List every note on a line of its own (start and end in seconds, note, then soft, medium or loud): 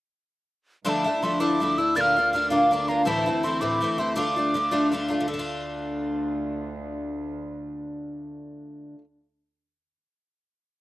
0.84 5.25 D2 medium
0.84 1.05 D3 medium
0.84 1.05 F3 medium
0.84 1.05 A3 medium
0.84 1.05 D4 medium
0.84 1.03 E4 medium
0.84 0.90 C6 medium
0.89 1.24 A5 medium
1.04 1.22 A3 soft
1.04 1.23 D4 soft
1.04 1.22 E4 soft
1.22 1.40 F3 soft
1.22 1.40 A3 medium
1.22 1.39 D4 soft
1.22 1.39 E4 soft
1.22 1.42 C6 medium
1.40 1.61 D3 soft
1.40 1.59 F3 soft
1.40 1.60 A3 medium
1.40 1.61 D4 medium
1.40 1.61 E4 medium
1.40 1.79 D6 medium
1.60 1.78 F3 soft
1.60 1.78 A3 medium
1.60 1.78 D4 medium
1.60 1.77 E4 medium
1.78 1.96 A3 soft
1.78 1.96 D4 soft
1.78 1.95 E4 soft
1.78 1.98 E6 medium
1.95 2.16 A#2 medium
1.95 2.16 D3 medium
1.95 2.16 A#3 medium
1.95 2.17 D4 medium
1.95 2.15 F4 medium
1.95 2.02 A6 medium
2.01 2.33 F6 medium
2.16 2.33 A#3 soft
2.16 2.34 D4 soft
2.16 2.33 F4 soft
2.33 2.50 D3 soft
2.33 2.50 A#3 medium
2.33 2.50 D4 soft
2.33 2.49 F4 medium
2.33 2.49 F6 medium
2.50 2.72 A#2 soft
2.50 2.70 D3 medium
2.50 2.71 A#3 soft
2.50 2.71 D4 soft
2.50 2.71 F4 medium
2.50 2.90 D6 medium
2.71 2.88 D3 medium
2.71 2.89 A#3 medium
2.71 2.88 D4 medium
2.71 2.87 F4 medium
2.88 3.06 A#3 soft
2.88 3.06 D4 soft
2.88 3.05 F4 soft
2.88 3.05 A#5 medium
3.05 3.26 A2 medium
3.05 3.26 E3 medium
3.05 3.27 A3 medium
3.05 3.26 C4 medium
3.05 3.25 E4 medium
3.05 3.46 A5 medium
3.26 3.43 A3 soft
3.26 3.44 C4 soft
3.26 3.43 E4 soft
3.43 3.61 E3 soft
3.43 3.61 A3 medium
3.43 3.60 C4 soft
3.43 3.60 E4 medium
3.43 3.62 C6 medium
3.61 3.82 A2 soft
3.61 3.79 E3 soft
3.61 3.80 A3 soft
3.61 3.81 C4 soft
3.61 3.81 E4 medium
3.61 4.01 D6 medium
3.81 3.98 E3 soft
3.81 3.99 A3 soft
3.81 3.98 C4 medium
3.81 3.97 E4 medium
3.98 4.15 A3 soft
3.98 4.16 C4 soft
3.98 4.16 E4 medium
3.98 4.15 C6 medium
4.15 4.36 D3 medium
4.15 4.37 A3 medium
4.15 4.37 D4 medium
4.15 4.35 F4 medium
4.15 4.88 D6 medium
4.36 4.54 A3 soft
4.36 4.54 D4 soft
4.36 4.54 F4 soft
4.54 4.71 D3 medium
4.54 4.71 A3 medium
4.54 4.71 D4 soft
4.54 4.70 F4 medium
4.71 4.90 D3 medium
4.71 4.91 A3 medium
4.71 4.92 D4 medium
4.71 4.92 F4 medium
4.92 5.09 D3 medium
4.92 5.10 A3 medium
4.92 5.09 D4 medium
4.92 5.07 F4 medium
5.08 5.27 A3 soft
5.08 5.27 D4 soft
5.08 5.26 F4 soft
5.20 8.94 D3 medium
5.27 8.28 D2 medium
5.27 8.98 A3 medium
5.34 9.01 D4 medium
5.39 9.04 F4 medium